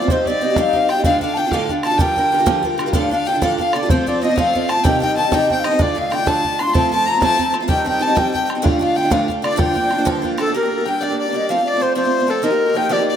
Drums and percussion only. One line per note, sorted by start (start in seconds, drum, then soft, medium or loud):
0.08 bodhran medium
0.26 bodhran soft
0.56 bodhran medium
0.73 bodhran soft
0.89 bodhran medium
1.04 bodhran medium
1.21 bodhran soft
1.52 bodhran medium
1.69 bodhran soft
1.83 bodhran medium
1.99 bodhran medium
2.17 bodhran soft
2.47 bodhran medium
2.64 bodhran soft
2.79 bodhran medium
2.93 bodhran medium
3.11 bodhran soft
3.42 bodhran medium
3.58 bodhran soft
3.73 bodhran medium
3.90 bodhran medium
4.08 bodhran soft
4.38 bodhran medium
4.55 bodhran soft
4.69 bodhran medium
4.85 bodhran medium
5.03 bodhran soft
5.32 bodhran medium
5.50 bodhran soft
5.64 bodhran medium
5.79 bodhran loud
5.98 bodhran soft
6.12 bodhran medium
6.27 bodhran loud
6.45 bodhran soft
6.59 bodhran medium
6.75 bodhran medium
6.92 bodhran soft
7.22 bodhran loud
7.39 bodhran soft
7.54 bodhran medium
7.69 bodhran medium
7.87 bodhran soft
8.17 bodhran medium
8.35 bodhran soft
8.50 bodhran medium
8.66 bodhran loud
8.82 bodhran soft
9.12 bodhran loud
9.29 bodhran soft
9.44 bodhran medium
9.59 bodhran loud
9.76 bodhran soft
9.91 bodhran medium
10.07 bodhran medium
10.24 bodhran soft
10.38 bodhran medium